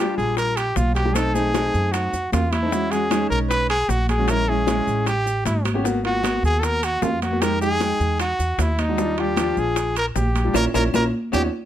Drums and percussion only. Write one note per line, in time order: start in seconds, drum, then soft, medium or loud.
0.18 high conga soft
0.18 maracas soft
0.37 high bongo medium
0.37 high conga soft
0.37 high timbale medium
0.37 maracas medium
0.57 high conga soft
0.57 high timbale medium
0.57 claves medium
0.57 maracas medium
0.76 high bongo medium
0.76 low bongo medium
0.76 high conga medium
0.76 maracas medium
0.95 high conga medium
0.95 high timbale medium
0.95 maracas soft
1.15 high bongo medium
1.15 high conga soft
1.15 high timbale medium
1.15 claves medium
1.15 maracas medium
1.35 high bongo soft
1.35 high conga soft
1.35 maracas medium
1.54 high bongo soft
1.54 high conga medium
1.54 high timbale medium
1.54 maracas medium
1.74 high conga soft
1.74 maracas soft
1.94 high bongo medium
1.94 high conga soft
1.94 high timbale medium
1.94 claves medium
1.94 maracas medium
2.13 high bongo soft
2.13 high conga soft
2.13 maracas medium
2.32 high bongo medium
2.32 low bongo medium
2.32 high conga medium
2.32 high timbale medium
2.32 low timbale medium
2.32 maracas medium
2.52 high bongo soft
2.52 high conga medium
2.52 high timbale medium
2.52 claves medium
2.52 maracas soft
2.72 high bongo medium
2.72 high conga soft
2.72 maracas medium
2.92 high conga soft
2.92 high timbale medium
2.92 maracas medium
3.11 high bongo soft
3.11 high conga medium
3.11 high timbale medium
3.11 claves medium
3.11 maracas medium
3.32 maracas soft
3.50 high bongo medium
3.50 high conga soft
3.50 high timbale medium
3.50 maracas medium
3.70 high conga soft
3.70 high timbale medium
3.70 claves medium
3.89 high bongo medium
3.89 low bongo medium
3.89 high conga medium
3.89 maracas medium
4.09 high conga medium
4.09 high timbale medium
4.09 maracas soft
4.28 high bongo medium
4.28 high conga soft
4.28 high timbale medium
4.28 claves medium
4.28 maracas medium
4.48 high bongo soft
4.48 high conga soft
4.67 high bongo medium
4.67 high conga medium
4.67 high timbale medium
4.67 maracas medium
4.88 maracas soft
5.06 high bongo medium
5.06 high conga soft
5.06 high timbale medium
5.06 claves medium
5.06 maracas medium
5.26 high bongo soft
5.26 high conga soft
5.26 maracas medium
5.45 high bongo medium
5.45 low bongo medium
5.45 high conga medium
5.45 high timbale medium
5.45 maracas medium
5.65 high bongo soft
5.65 high conga medium
5.65 high timbale medium
5.65 claves medium
5.65 maracas soft
5.85 high bongo medium
5.85 high conga soft
5.85 maracas medium
6.04 high conga soft
6.04 high timbale medium
6.24 high bongo medium
6.24 high conga medium
6.24 high timbale medium
6.24 claves medium
6.24 maracas medium
6.43 high conga soft
6.43 maracas soft
6.63 high bongo medium
6.63 high conga soft
6.63 high timbale medium
6.63 maracas medium
6.83 high conga soft
6.83 high timbale medium
6.83 claves medium
6.83 maracas medium
7.02 high bongo medium
7.02 low bongo medium
7.02 high conga medium
7.02 low timbale medium
7.02 maracas medium
7.22 high conga medium
7.22 high timbale medium
7.22 maracas soft
7.42 high bongo medium
7.42 high conga soft
7.42 high timbale medium
7.42 claves medium
7.42 maracas medium
7.61 high bongo soft
7.61 high conga soft
7.61 maracas medium
7.80 high bongo medium
7.80 high conga medium
7.80 high timbale medium
7.80 maracas medium
8.00 high conga soft
8.00 maracas soft
8.20 high bongo medium
8.20 high conga soft
8.20 high timbale medium
8.20 claves medium
8.20 maracas medium
8.39 high bongo soft
8.39 high conga soft
8.39 maracas medium
8.59 high bongo medium
8.59 low bongo medium
8.59 high conga medium
8.59 high timbale medium
8.59 maracas medium
8.79 high bongo soft
8.79 high conga medium
8.79 high timbale medium
8.79 claves medium
8.79 maracas soft
8.98 high bongo medium
8.98 high conga soft
8.98 maracas medium
9.18 high conga soft
9.18 high timbale medium
9.36 high bongo medium
9.36 high conga medium
9.36 high timbale medium
9.36 claves medium
9.36 maracas medium
9.57 high conga soft
9.57 maracas soft
9.76 high bongo medium
9.76 high conga soft
9.76 high timbale medium
9.76 maracas medium
9.96 high conga soft
9.96 high timbale medium
9.96 claves medium
9.96 maracas medium
10.16 high bongo medium
10.16 low bongo medium
10.16 high conga medium
10.16 maracas medium
10.35 high conga medium
10.35 high timbale medium
10.35 maracas soft
10.54 high bongo loud
10.54 high conga medium
10.54 high timbale loud
10.54 claves medium
10.54 maracas loud
10.74 high bongo medium
10.74 high conga medium
10.74 high timbale medium
10.74 claves medium
10.74 maracas medium
10.94 high bongo medium
10.94 high conga medium
10.94 high timbale loud
10.94 claves medium
10.94 maracas medium
11.33 high bongo medium
11.33 high conga medium
11.33 high timbale medium
11.33 claves medium
11.33 maracas medium